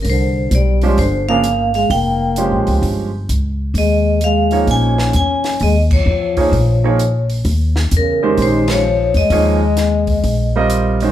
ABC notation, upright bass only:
X:1
M:4/4
L:1/8
Q:"Swing" 1/4=130
K:Ebmix
V:1 name="Upright bass" clef=bass
C,,2 =B,,,2 G,,,4 | F,,,2- (3F,,, B,,, D,, G,,,2 D,,2 | E,,4 B,,,2 =E,,2 | E,,2 =E,,2 B,,,4 |
E,,2 =E,,2 B,,,3 E,, | E,,4 B,,,4 |]